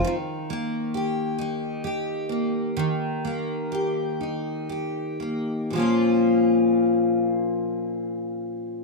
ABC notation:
X:1
M:6/8
L:1/8
Q:3/8=41
K:Ebdor
V:1 name="Steel-string acoustic guitar"
E, B, =G E G B, | E, B, =G E G B, | [B,,F,B,DF]6 |]